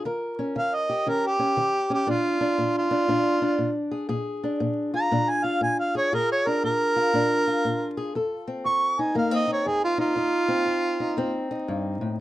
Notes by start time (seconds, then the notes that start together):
0.05 D#3 A#4
0.39 C#4
0.56 D#3 F5
0.75 D#5
0.89 G4
1.06 D#3 C#4 A#4
1.27 G4
1.39 C#4
1.57 D#3
1.90 C#4 G4
2.07 A#2 D4 F4
2.41 D4
2.58 A#2
2.78 F4
2.91 D4
3.08 A#2 D4
3.42 D4
3.58 A#2
3.92 G#4
4.09 A#2 G#4
4.43 D4
4.60 A#2
4.94 F4 A#5
5.11 A#2 D4
5.30 G#5
5.44 F4 F5
5.61 A#2 G#5
5.80 F5
5.95 G#4 C#5
6.12 A#2 G#4 A#4
6.32 C#5
6.47 D4 A#4
6.63 A#2 A#4
6.96 F4
7.14 A#2 D4
7.47 F4
7.65 A#2
7.97 G#4
8.15 F2 A4
8.47 C4
8.65 F2 C#6
8.99 D#4 G#5
9.15 F2 A#3 F5
9.31 C4 D#5
9.48 D#4
9.53 C#5
9.66 F2 G#4
9.84 F4
9.98 D#4 F4
10.15 F2 D#4
10.48 C4
10.65 F2
11.00 D#4
11.17 F2 C4
11.51 D#4
11.68 G2
12.01 A2